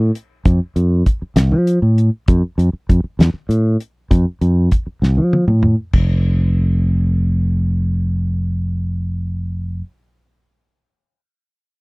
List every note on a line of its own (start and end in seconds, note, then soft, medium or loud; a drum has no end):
0.15 closed hi-hat medium
0.45 0.59 F2 medium
0.45 kick medium
0.45 closed hi-hat medium
0.76 1.02 F2 medium
0.76 closed hi-hat soft
1.06 kick medium
1.06 closed hi-hat medium
1.22 muted fingered electric bass stroke soft
1.36 1.53 C2 medium
1.36 snare medium
1.36 closed hi-hat medium
1.51 1.78 F3 medium
1.67 closed hi-hat medium
1.82 2.09 A2 medium
1.98 closed hi-hat soft
2.28 2.41 F2 medium
2.28 kick medium
2.28 closed hi-hat medium
2.58 2.71 F2 medium
2.58 closed hi-hat soft
2.73 muted fingered electric bass stroke soft
2.89 3.02 F2 medium
2.89 kick medium
2.89 closed hi-hat medium
3.04 muted fingered electric bass stroke soft
3.19 3.32 E2 medium
3.19 snare loud
3.19 closed hi-hat medium
3.34 muted fingered electric bass stroke soft
3.49 3.76 A2 medium
3.49 closed hi-hat medium
3.80 closed hi-hat soft
4.11 4.24 F2 medium
4.11 kick medium
4.11 closed hi-hat medium
4.41 4.68 F2 medium
4.41 closed hi-hat soft
4.72 kick medium
4.72 closed hi-hat soft
4.87 muted fingered electric bass stroke soft
5.02 5.19 C2 medium
5.02 snare soft
5.17 5.44 F3 medium
5.33 high tom medium
5.48 5.74 A2 medium
5.48 mid tom soft
5.63 mid tom medium
5.93 9.81 F1 medium
5.93 kick medium
5.93 crash medium